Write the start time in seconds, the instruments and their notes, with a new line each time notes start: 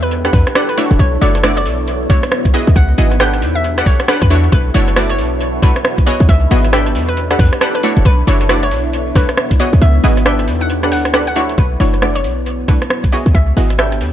Already playing: 808-style bass E2, synth stab D4 G4 A4 B4 G5, string machine D4 G4 A4, ambient pad E4 C#5
0.03 synth pluck B4
0.11 closed hi-hat
0.16 ambient pad B4
0.25 synth stab D4 G4 A4 B4 F#5, cross-stick
0.33 808-style bass E2, synth pluck B4, kick, open hi-hat
0.47 cross-stick, closed hi-hat
0.55 synth stab D4 G4 A4 B4 F#5, cross-stick
0.69 synth pluck B4, closed hi-hat
0.77 synth stab A3 D4 E4 F#4 C#5, open hi-hat
0.91 808-style bass E1, closed hi-hat
0.99 808-style bass B1, ambient pad B3, string machine E4 C#5, synth pluck C#5, kick, closed hi-hat
1.21 808-style bass F#1, synth stab A3 D4 E4 F#4 C#5, synth pluck D5, open hi-hat
1.35 cross-stick, closed hi-hat
1.39 ambient pad F#4
1.43 synth stab A3 D4 E4 F#4 D5, cross-stick
1.57 synth pluck D5, cross-stick, closed hi-hat
1.66 808-style bass B1, open hi-hat
1.88 closed hi-hat
2.10 808-style bass B1, synth stab A3 D4 E4 F#4 C#5, synth pluck C#5, kick, open hi-hat
2.23 cross-stick, closed hi-hat
2.32 cross-stick
2.45 kick, closed hi-hat
2.54 synth stab B3 E4 F#4 G#4 D#5, ambient pad C#5, synth pluck D#5, open hi-hat
2.67 808-style bass C#2, closed hi-hat
2.76 808-style bass C#2, synth pluck F#5, kick, closed hi-hat
2.98 808-style bass G#1, synth stab B3 E4 F#4 G#4 D#5, open hi-hat
3.11 cross-stick, closed hi-hat
3.20 synth stab D4 G4 A4 B4 G5, synth pluck F#5, cross-stick
3.34 cross-stick, closed hi-hat
3.42 808-style bass E2, string machine D4 G4 A4, ambient pad E4, open hi-hat
3.55 synth pluck E5
3.64 closed hi-hat
3.78 synth stab D4 G4 A4 B4 F#5, cross-stick
3.86 synth pluck C#5, kick, open hi-hat
3.93 ambient pad B4
4.00 cross-stick, closed hi-hat
4.08 synth stab D4 G4 A4 B4 F#5, cross-stick
4.22 808-style bass E2, synth pluck B4, kick, closed hi-hat
4.30 synth stab A3 D4 E4 F#4 C#5, open hi-hat
4.44 closed hi-hat
4.52 808-style bass B1, ambient pad B3, string machine E4 A4 C#5, synth pluck B4, kick, closed hi-hat
4.68 ambient pad F#4
4.74 808-style bass F#1, synth stab A3 D4 E4 F#4 C#5, synth pluck C#5, open hi-hat
4.88 cross-stick, closed hi-hat
4.96 synth stab A3 D4 E4 F#4 D5, cross-stick
5.10 synth pluck C#5, cross-stick, closed hi-hat
5.19 808-style bass B1, open hi-hat
5.41 closed hi-hat
5.62 808-style bass B1, synth stab A3 D4 E4 F#4 C#5, synth pluck B4, kick, open hi-hat
5.76 cross-stick, closed hi-hat
5.85 cross-stick
5.98 kick, closed hi-hat
6.06 synth stab B3 E4 F#4 G#4 D#5, synth pluck C#5, ambient pad C#5, open hi-hat
6.20 808-style bass C#2, closed hi-hat
6.29 808-style bass C#2, synth pluck E5, kick, closed hi-hat
6.51 808-style bass G#1, synth stab B3 E4 F#4 G#4 D#5, open hi-hat
6.64 cross-stick, closed hi-hat
6.73 synth stab D4 G4 A4 B4 G5, synth pluck E5, cross-stick
6.86 cross-stick, closed hi-hat
6.95 808-style bass E2, string machine D4 G4 A4, ambient pad E4, open hi-hat
7.08 synth pluck B4
7.17 closed hi-hat
7.30 synth stab D4 G4 A4 B4 F#5, cross-stick
7.38 808-style bass E2, ambient pad B4, synth pluck B4, kick, open hi-hat
7.53 cross-stick, closed hi-hat
7.61 synth stab D4 G4 A4 B4 F#5, cross-stick
7.75 synth pluck B4, closed hi-hat
7.83 synth stab A3 D4 E4 F#4 C#5, open hi-hat
7.97 808-style bass E1, closed hi-hat
8.05 808-style bass B1, ambient pad B3, string machine E4 C#5, synth pluck B4, kick, closed hi-hat
8.27 808-style bass F#1, synth stab A3 D4 E4 F#4 C#5, synth pluck C#5, open hi-hat
8.41 cross-stick, closed hi-hat
8.49 synth stab A3 D4 E4 F#4 D5, cross-stick
8.63 synth pluck C#5, cross-stick, closed hi-hat
8.67 ambient pad F#4, open hi-hat
8.71 808-style bass B1
8.93 closed hi-hat
9.15 808-style bass B1, synth stab A3 D4 E4 F#4 C#5, synth pluck B4, kick, open hi-hat
9.29 cross-stick, closed hi-hat
9.37 cross-stick
9.51 kick, closed hi-hat
9.60 synth stab B3 E4 F#4 G#4 D#5, ambient pad C#5, synth pluck C#5, open hi-hat
9.73 808-style bass C#2, closed hi-hat
9.81 808-style bass C#2, synth pluck E5, closed hi-hat
10.04 808-style bass G#1, synth stab B3 E4 F#4 G#4 D#5, open hi-hat
10.17 cross-stick, closed hi-hat
10.26 synth stab D4 G4 A4 B4 G5, synth pluck E5, cross-stick
10.39 cross-stick, closed hi-hat
10.48 808-style bass E2, string machine D4 G4 A4, ambient pad E4, open hi-hat
10.61 synth pluck F#5, closed hi-hat
10.70 closed hi-hat
10.83 synth stab D4 G4 A4 B4 F#5, cross-stick
10.92 808-style bass D2, synth pluck F#5, open hi-hat
10.99 ambient pad B4
11.05 cross-stick, closed hi-hat
11.14 synth stab D4 G4 A4 B4 F#5, cross-stick
11.27 synth pluck F#5, closed hi-hat
11.36 synth stab A3 D4 E4 F#4 C#5, open hi-hat
11.49 closed hi-hat
11.58 808-style bass B1, ambient pad B3, synth pluck B4, kick, closed hi-hat
11.78 808-style bass F#1, synth stab A3 D4 E4 F#4 C#5, ambient pad F#4, synth pluck C#5, open hi-hat
11.94 cross-stick, closed hi-hat
12.02 synth stab A3 D4 E4 F#4 D5, cross-stick
12.15 synth pluck C#5, cross-stick, closed hi-hat
12.24 808-style bass B1, open hi-hat
12.46 closed hi-hat
12.68 808-style bass B1, synth stab A3 D4 E4 F#4 C#5, synth pluck B4, kick, open hi-hat
12.82 cross-stick, closed hi-hat
12.90 cross-stick
13.04 kick, closed hi-hat
13.12 synth stab B3 E4 F#4 G#4 D#5, synth pluck C#5, ambient pad C#5, open hi-hat
13.26 808-style bass C#2, closed hi-hat
13.35 808-style bass C#2, synth pluck E5, kick, closed hi-hat
13.57 808-style bass G#1, synth stab B3 E4 F#4 G#4 D#5, open hi-hat
13.70 cross-stick, closed hi-hat
13.79 synth stab D4 G4 A4 B4 G5, synth pluck E5, cross-stick
13.92 cross-stick, closed hi-hat
14.01 808-style bass E2, open hi-hat